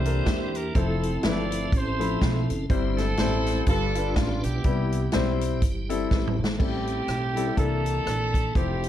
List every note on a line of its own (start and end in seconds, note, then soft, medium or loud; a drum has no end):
0.00 0.19 C2 loud
0.00 0.50 C3 medium
0.00 0.74 E3 medium
0.00 0.73 A#3 medium
0.00 0.73 D4 medium
0.00 0.71 E4 medium
0.00 0.71 G4 medium
0.00 0.73 G4 medium
0.00 0.55 C5 loud
0.05 0.50 D4 medium
0.05 0.50 E4 medium
0.05 0.50 A4 medium
0.05 0.50 A#4 medium
0.05 closed hi-hat medium
0.26 0.68 E2 medium
0.26 kick loud
0.26 snare loud
0.26 closed hi-hat medium
0.55 0.76 A#4 medium
0.55 closed hi-hat medium
0.74 1.16 F1 medium
0.74 2.66 F3 medium
0.74 1.08 F3 medium
0.74 1.08 A3 medium
0.74 2.66 C4 medium
0.74 1.69 C4 medium
0.74 2.66 E4 medium
0.74 1.69 E4 medium
0.74 1.08 E4 medium
0.74 2.66 A4 medium
0.74 1.23 A4 loud
0.74 1.08 C5 medium
0.74 kick loud
0.74 closed hi-hat medium
1.03 closed hi-hat medium
1.23 1.65 G1 medium
1.23 1.69 F3 medium
1.23 1.69 A3 medium
1.23 1.69 E4 medium
1.23 1.73 A4 medium
1.23 1.69 B4 medium
1.23 1.73 D5 loud
1.23 snare loud
1.23 closed hi-hat medium
1.52 closed hi-hat medium
1.72 2.14 A1 loud
1.72 2.67 E4 medium
1.72 2.67 A4 medium
1.72 2.50 C5 loud
1.72 kick loud
1.72 closed hi-hat medium
1.99 2.44 F3 medium
1.99 2.44 A3 medium
1.99 2.45 E4 medium
1.99 2.45 B5 medium
1.99 closed hi-hat medium
2.22 2.45 B1 medium
2.22 kick medium
2.22 snare loud
2.22 closed hi-hat medium
2.50 2.67 F#1 medium
2.50 closed hi-hat medium
2.69 3.11 G1 loud
2.69 3.42 G2 medium
2.69 3.65 G3 medium
2.69 3.02 G3 medium
2.69 3.65 C4 medium
2.69 3.02 C4 medium
2.69 3.65 E4 medium
2.69 3.03 E4 medium
2.69 3.65 C5 medium
2.69 3.03 C5 medium
2.69 kick loud
2.69 closed hi-hat medium
2.98 3.64 C4 medium
2.98 3.64 E4 medium
2.98 3.63 A4 loud
2.98 snare soft
2.98 closed hi-hat medium
3.17 3.60 A1 medium
3.17 3.64 G3 medium
3.17 3.64 C4 medium
3.17 3.64 E4 medium
3.17 3.64 C5 medium
3.17 snare loud
3.17 closed hi-hat medium
3.46 snare soft
3.46 closed hi-hat medium
3.66 4.16 G1 medium
3.66 4.40 G2 medium
3.66 4.63 G3 medium
3.66 3.90 G3 medium
3.66 4.61 D4 medium
3.66 4.63 D4 medium
3.66 3.90 D4 medium
3.66 4.14 F4 medium
3.66 4.63 F4 medium
3.66 3.90 F4 medium
3.66 4.13 A4 loud
3.66 4.63 B4 medium
3.66 3.90 B4 medium
3.66 kick loud
3.66 closed hi-hat medium
3.95 4.39 G3 medium
3.95 4.40 D4 medium
3.95 4.39 F4 medium
3.95 4.40 B4 medium
3.95 closed hi-hat medium
4.15 4.39 A1 loud
4.15 4.43 F4 medium
4.15 kick medium
4.15 snare loud
4.15 closed hi-hat medium
4.43 4.62 B1 medium
4.43 5.37 B3 medium
4.43 5.37 E4 medium
4.43 5.37 G4 medium
4.43 closed hi-hat medium
4.64 5.06 C2 medium
4.64 5.37 C3 medium
4.64 6.56 G3 medium
4.64 4.97 G3 medium
4.64 4.97 B3 medium
4.64 6.56 E4 medium
4.64 4.98 E4 medium
4.64 6.08 G4 medium
4.64 4.97 B4 medium
4.64 kick loud
4.64 closed hi-hat medium
4.92 closed hi-hat medium
5.12 5.62 B1 medium
5.12 5.59 G3 medium
5.12 5.59 C4 medium
5.12 5.59 E4 medium
5.12 5.59 C5 loud
5.12 snare loud
5.12 closed hi-hat medium
5.41 closed hi-hat medium
5.62 6.04 G1 medium
5.62 kick loud
5.62 closed hi-hat loud
5.89 6.34 G3 medium
5.89 6.34 C4 medium
5.89 6.34 E4 medium
5.89 6.34 A4 medium
5.89 closed hi-hat medium
6.11 6.34 A1 medium
6.11 6.38 G4 medium
6.11 6.38 B4 medium
6.11 kick medium
6.11 snare medium
6.27 mid tom medium
6.39 6.56 G#1 medium
6.39 6.60 A4 medium
6.39 6.85 C5 medium
6.44 snare loud
6.58 7.01 A1 medium
6.58 7.32 A2 medium
6.58 7.05 G3 medium
6.58 7.56 G3 medium
6.58 7.05 C4 medium
6.58 7.53 C4 medium
6.58 7.56 C4 soft
6.58 7.05 E4 medium
6.58 7.53 E4 medium
6.58 7.56 E4 medium
6.58 7.54 G4 medium
6.58 7.05 A4 medium
6.58 7.56 A4 medium
6.58 kick loud
6.58 crash medium
6.87 closed hi-hat medium
7.08 7.49 B1 medium
7.08 cross-stick loud
7.08 closed hi-hat medium
7.36 7.43 G3 medium
7.36 7.43 C4 medium
7.36 7.43 E4 medium
7.36 7.43 A4 medium
7.36 closed hi-hat medium
7.47 7.57 G3 medium
7.47 7.57 C4 soft
7.47 7.56 E4 soft
7.57 7.99 C2 medium
7.57 8.30 C3 medium
7.57 8.53 E3 medium
7.57 8.39 A#3 medium
7.57 8.54 A#3 soft
7.57 8.51 D4 medium
7.57 8.39 D4 medium
7.57 8.53 D4 medium
7.57 8.51 E4 medium
7.57 8.39 E4 medium
7.57 8.55 A4 loud
7.57 8.38 A4 medium
7.57 8.54 A4 medium
7.57 kick medium
7.57 closed hi-hat medium
7.86 closed hi-hat medium
8.06 8.48 A#1 medium
8.06 cross-stick loud
8.06 closed hi-hat medium
8.34 kick medium
8.34 closed hi-hat medium
8.55 8.89 F1 medium
8.55 8.89 F3 medium
8.55 8.89 A3 medium
8.55 8.89 C4 medium
8.55 8.89 C4 soft
8.55 8.89 E4 medium
8.55 8.89 E4 soft
8.55 8.89 G4 medium
8.55 8.89 A4 medium
8.55 8.89 C5 medium
8.55 kick loud
8.55 closed hi-hat medium
8.83 closed hi-hat medium